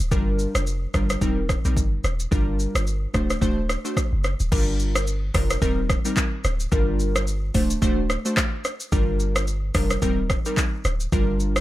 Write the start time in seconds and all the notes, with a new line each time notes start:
0.00 D1
0.11 G1 G3 D4 F4 A#4, kick, shaker
0.39 shaker
0.55 F1, cross-stick, shaker
0.67 shaker
0.94 G1 G3 D4 F4 A#4, kick, cross-stick, shaker
1.10 cross-stick, shaker
1.21 D#1 G3 C4 D#4 A#4, kick, shaker
1.49 kick, cross-stick, shaker
1.65 A#1 G3 C4 D#4 A#4, shaker
1.77 G1, kick, shaker
2.04 D#1, cross-stick, shaker
2.20 shaker
2.31 G1 G3 D4 F4 A#4, kick, shaker
2.59 shaker
2.75 G1, cross-stick, shaker
2.87 shaker
3.14 D1 A3 D4 F#4 C5, kick, cross-stick, shaker
3.30 cross-stick, shaker
3.41 D1 A3 D4 F#4 C5, kick, shaker
3.69 cross-stick, shaker
3.85 A3 D4 F#4 C5, shaker
3.97 kick, cross-stick, shaker
4.13 F#1
4.24 cross-stick, shaker
4.40 D1, shaker
4.52 G1 G3 D4 F4 A#4, kick, crash, shaker
4.79 shaker
4.95 cross-stick, shaker
5.07 shaker
5.34 F1 G3 D4 F4 A#4, kick, cross-stick, open hi-hat, shaker
5.50 cross-stick, shaker
5.62 D#1 G3 C4 D#4 A#4, kick, shaker
5.90 kick, cross-stick, shaker
6.05 G3 C4 D#4 A#4, shaker
6.17 kick, clap, shaker
6.44 D1, cross-stick, shaker
6.60 shaker
6.72 G1 G3 D4 F4 A#4, kick, shaker
7.00 shaker
7.16 cross-stick, shaker
7.27 shaker
7.54 D1 A3 D4 F#4 C5, kick, open hi-hat, shaker
7.70 shaker
7.82 D1 A3 D4 F#4 C5, kick, shaker
8.10 cross-stick, shaker
8.25 A3 D4 F#4 C5, shaker
8.37 kick, cross-stick, clap, shaker
8.64 cross-stick, shaker
8.80 shaker
8.92 G1 G3 D4 F4 A#4, kick, shaker
9.20 shaker
9.36 cross-stick, shaker
9.47 shaker
9.74 F1 G3 D4 F4 A#4, kick, cross-stick, open hi-hat, shaker
9.90 cross-stick, shaker
10.02 D#1 G3 C4 D#4 A#4, kick, shaker
10.30 kick, cross-stick, shaker
10.45 G3 C4 D#4 A#4, shaker
10.57 kick, clap, shaker
10.85 D1, cross-stick, shaker
11.00 shaker
11.12 G1 G3 D4 F4 A#4, kick, shaker
11.40 shaker
11.56 cross-stick, shaker